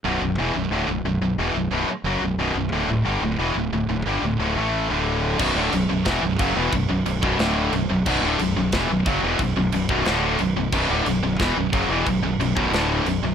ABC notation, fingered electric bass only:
X:1
M:4/4
L:1/8
Q:1/4=180
K:Bm
V:1 name="Fingered electric bass" clef=bass
B,,,, B,,,, E,,, B,,,, D,,, B,,,, B,,,, B,,,, | E,,, B,,,, B,,,, z F,,, B,,,, B,,,, B,,,, | D,,, D,,, G,,, D,,, E,,, D,,, D,,, D,,, | G,,, D,,, D,,, A,,,2 D,,,3 |
B,,,, D,,, B,,,, B,,,, E,,, B,,,, F,,, E,,, | B,,,, B,,,, B,,,, B,,,, D,,,2 B,,,, B,,,, | B,,,, D,,, B,,,, B,,,, E,,, B,,,, F,,, E,,, | B,,,, B,,,, B,,,, B,,,, D,,,2 B,,,, B,,,, |
B,,,, D,,, B,,,, B,,,, E,,, B,,,, F,,, E,,, | B,,,, B,,,, B,,,, B,,,, D,,,2 B,,,, B,,,, |]